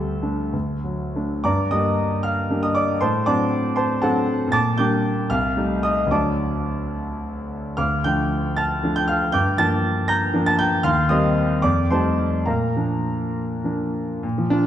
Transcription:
0.00 0.51 D2 soft
0.00 0.41 G3 soft
0.00 0.53 A4 medium
0.23 0.51 A3 soft
0.23 0.51 D4 soft
0.53 1.43 D2 soft
0.84 1.34 F#3 soft
1.15 1.42 A3 soft
1.15 1.43 D4 soft
1.44 1.71 G2 soft
1.44 1.70 D5 medium
1.44 1.70 A#5 soft
1.44 1.72 D6 medium
1.71 2.47 G3 soft
1.71 2.47 A#3 soft
1.71 2.47 D4 soft
1.71 2.21 D#5 medium
1.71 2.25 D#6 medium
2.23 2.61 F5 medium
2.23 2.63 F6 medium
2.50 2.97 G3 soft
2.50 2.97 A#3 soft
2.50 2.98 D4 soft
2.63 2.76 D#5 soft
2.63 2.76 D#6 medium
2.75 3.00 D5 medium
2.75 3.01 D6 medium
3.01 3.26 A2 medium
3.01 3.25 C5 medium
3.01 3.25 A5 medium
3.01 3.27 C6 medium
3.26 3.98 F#3 soft
3.26 3.98 C4 soft
3.26 3.98 D4 soft
3.26 3.73 D5 medium
3.26 3.74 A5 medium
3.26 3.77 D6 medium
3.76 4.00 C5 medium
3.76 4.00 A5 medium
3.76 4.02 C6 medium
4.02 4.48 F#3 soft
4.02 4.49 C4 soft
4.02 4.49 D4 soft
4.02 4.49 A4 medium
4.02 4.49 F#5 medium
4.02 4.52 A5 medium
4.48 4.74 A#2 medium
4.52 4.76 A5 medium
4.52 4.76 D6 medium
4.52 4.77 A6 medium
4.78 5.26 G3 soft
4.78 5.26 A#3 soft
4.78 5.26 D4 medium
4.78 5.26 G5 medium
4.78 5.27 D6 medium
4.78 5.29 G6 medium
5.30 5.56 C2 medium
5.30 5.81 F5 medium
5.30 5.84 F6 medium
5.57 6.08 G3 soft
5.57 6.08 A3 soft
5.57 6.08 D#4 soft
5.83 6.10 D#5 medium
5.83 6.11 D#6 medium
6.07 7.72 D2 soft
6.07 7.73 F#3 soft
6.07 7.74 A3 soft
6.07 7.74 D4 soft
6.11 6.92 D5 soft
6.11 6.92 A5 soft
6.11 6.96 D6 medium
7.77 8.04 D2 soft
7.77 8.03 F5 soft
7.77 8.03 D6 soft
7.77 8.04 F6 medium
8.04 8.79 F3 soft
8.04 8.80 A3 soft
8.04 8.80 D4 soft
8.04 8.54 G5 medium
8.04 8.57 G6 medium
8.57 8.94 A5 medium
8.57 8.93 F6 medium
8.57 8.96 A6 medium
8.83 9.30 F3 soft
8.83 9.31 A3 soft
8.83 9.31 D4 soft
8.96 9.09 G5 medium
8.96 9.09 G6 medium
9.08 9.33 F5 medium
9.08 9.34 F6 medium
9.32 9.58 G2 medium
9.32 9.57 G5 medium
9.32 9.57 D6 medium
9.32 9.58 G6 medium
9.58 10.30 F3 soft
9.58 10.30 A#3 soft
9.58 10.31 D4 soft
9.58 10.06 A5 medium
9.58 10.09 A6 medium
10.08 10.44 A#5 medium
10.08 10.44 G6 medium
10.08 10.46 A#6 medium
10.34 10.80 F3 soft
10.34 10.80 A#3 soft
10.34 10.80 D4 medium
10.46 10.59 A5 medium
10.46 10.59 A6 medium
10.59 10.83 G5 medium
10.59 10.84 G6 medium
10.83 11.09 D#2 medium
10.83 11.08 F5 medium
10.83 11.08 C6 medium
10.83 11.09 F6 medium
11.09 11.59 G3 soft
11.09 11.59 A#3 soft
11.09 11.60 C4 soft
11.09 11.60 D#5 medium
11.09 11.60 C6 medium
11.09 11.63 D#6 medium
11.62 11.90 F2 medium
11.62 11.89 D5 medium
11.62 11.90 D6 medium
11.91 12.44 G3 soft
11.91 12.44 A3 soft
11.91 12.44 D#4 soft
11.91 12.44 C5 medium
11.91 12.44 A5 medium
11.91 12.47 C6 medium
12.46 12.76 A#2 soft
12.46 13.90 A#4 soft
12.46 13.90 F5 soft
12.46 13.93 A#5 medium
12.76 13.61 F3 soft
12.76 13.61 A#3 soft
12.76 13.61 D4 soft
13.64 14.19 F3 soft
13.64 14.19 A#3 soft
13.64 14.19 D4 soft
14.23 14.67 A#2 medium
14.38 14.61 F3 soft
14.50 14.67 D4 medium
14.50 14.67 F4 soft

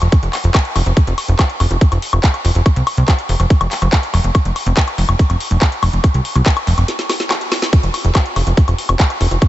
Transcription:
0.02 0.08 F1 medium
0.02 closed hi-hat soft
0.02 high woodblock soft
0.12 kick loud
0.12 closed hi-hat medium
0.23 0.29 F1 medium
0.23 closed hi-hat soft
0.33 clap medium
0.33 open hi-hat loud
0.33 high woodblock soft
0.44 0.50 F1 medium
0.44 closed hi-hat soft
0.55 kick loud
0.55 clap loud
0.55 closed hi-hat medium
0.55 high woodblock medium
0.65 closed hi-hat soft
0.76 0.82 F1 loud
0.76 open hi-hat loud
0.76 high woodblock soft
0.86 0.92 F1 medium
0.86 closed hi-hat soft
0.97 kick loud
0.97 closed hi-hat medium
1.07 1.13 F1 medium
1.07 closed hi-hat soft
1.18 open hi-hat loud
1.18 high woodblock soft
1.28 1.35 F1 medium
1.28 closed hi-hat soft
1.39 kick loud
1.39 clap loud
1.39 closed hi-hat medium
1.39 high woodblock medium
1.50 closed hi-hat soft
1.60 1.66 F1 medium
1.60 open hi-hat medium
1.60 high woodblock soft
1.71 1.77 F1 medium
1.71 closed hi-hat soft
1.81 kick loud
1.81 closed hi-hat medium
1.92 1.98 F1 medium
1.92 closed hi-hat soft
1.92 high woodblock soft
2.02 open hi-hat loud
2.13 2.19 F1 medium
2.13 closed hi-hat soft
2.13 high woodblock medium
2.24 kick loud
2.24 clap loud
2.24 closed hi-hat medium
2.34 closed hi-hat soft
2.34 high woodblock soft
2.45 2.51 F1 medium
2.45 open hi-hat medium
2.55 2.61 F1 medium
2.55 closed hi-hat soft
2.66 kick loud
2.66 closed hi-hat medium
2.66 high woodblock soft
2.76 2.82 C2 medium
2.76 closed hi-hat soft
2.87 open hi-hat loud
2.87 high woodblock medium
2.97 3.04 C2 medium
2.97 closed hi-hat soft
3.08 kick loud
3.08 clap loud
3.08 closed hi-hat medium
3.08 high woodblock soft
3.19 closed hi-hat soft
3.29 3.35 F1 medium
3.29 open hi-hat medium
3.40 3.46 F1 medium
3.40 closed hi-hat soft
3.40 high woodblock soft
3.50 kick loud
3.50 closed hi-hat medium
3.61 3.67 F1 medium
3.61 closed hi-hat soft
3.61 high woodblock medium
3.71 clap medium
3.71 open hi-hat loud
3.82 3.88 F1 medium
3.82 closed hi-hat soft
3.82 high woodblock soft
3.93 kick loud
3.93 clap loud
3.93 closed hi-hat medium
4.03 closed hi-hat soft
4.14 4.20 F1 medium
4.14 open hi-hat medium
4.14 high woodblock soft
4.24 4.30 F1 medium
4.24 closed hi-hat soft
4.35 kick loud
4.35 closed hi-hat medium
4.35 high woodblock medium
4.45 4.51 F1 medium
4.45 closed hi-hat soft
4.56 open hi-hat loud
4.56 high woodblock soft
4.66 4.73 F1 medium
4.66 closed hi-hat soft
4.77 kick loud
4.77 clap loud
4.77 closed hi-hat medium
4.88 closed hi-hat soft
4.88 high woodblock soft
4.98 5.04 F1 medium
4.98 open hi-hat medium
5.09 5.15 F1 medium
5.09 closed hi-hat soft
5.09 high woodblock medium
5.19 kick loud
5.19 closed hi-hat medium
5.30 5.36 F1 medium
5.30 closed hi-hat soft
5.30 high woodblock soft
5.40 open hi-hat loud
5.51 5.57 F1 medium
5.51 closed hi-hat soft
5.62 kick loud
5.62 clap loud
5.62 closed hi-hat medium
5.62 high woodblock soft
5.72 closed hi-hat soft
5.83 5.89 F1 medium
5.83 open hi-hat medium
5.83 high woodblock medium
5.93 5.99 F1 medium
5.93 closed hi-hat soft
6.04 kick loud
6.04 closed hi-hat medium
6.04 high woodblock soft
6.14 6.21 C2 medium
6.14 closed hi-hat soft
6.25 open hi-hat loud
6.36 6.42 C2 medium
6.36 closed hi-hat soft
6.36 high woodblock soft
6.46 kick loud
6.46 clap loud
6.46 closed hi-hat medium
6.57 closed hi-hat soft
6.57 high woodblock medium
6.67 6.73 F1 medium
6.67 open hi-hat medium
6.78 6.84 F1 medium
6.78 closed hi-hat soft
6.78 high woodblock soft
6.88 snare medium
6.88 closed hi-hat medium
6.99 snare medium
6.99 closed hi-hat soft
7.09 snare medium
7.09 open hi-hat loud
7.09 high woodblock soft
7.20 snare medium
7.20 closed hi-hat soft
7.31 snare medium
7.31 clap loud
7.31 closed hi-hat medium
7.31 high woodblock medium
7.41 closed hi-hat soft
7.52 snare loud
7.52 open hi-hat medium
7.52 high woodblock soft
7.62 snare medium
7.62 closed hi-hat soft
7.73 kick loud
7.73 closed hi-hat medium
7.83 7.90 F1 medium
7.83 closed hi-hat soft
7.94 open hi-hat loud
7.94 high woodblock soft
8.04 8.11 F1 medium
8.04 closed hi-hat soft
8.15 kick loud
8.15 clap loud
8.15 closed hi-hat medium
8.15 high woodblock medium
8.26 closed hi-hat soft
8.36 8.42 F1 medium
8.36 open hi-hat loud
8.36 high woodblock soft
8.47 8.53 F1 medium
8.47 closed hi-hat soft
8.57 kick loud
8.57 closed hi-hat medium
8.68 8.74 F1 medium
8.68 closed hi-hat soft
8.68 high woodblock soft
8.78 open hi-hat loud
8.89 8.95 F1 medium
8.89 closed hi-hat soft
8.89 high woodblock medium
9.00 kick loud
9.00 clap loud
9.00 closed hi-hat medium
9.10 closed hi-hat soft
9.10 high woodblock soft
9.21 9.27 F1 medium
9.21 open hi-hat loud
9.31 9.37 F1 medium
9.31 closed hi-hat soft
9.42 kick loud
9.42 closed hi-hat medium
9.42 high woodblock soft

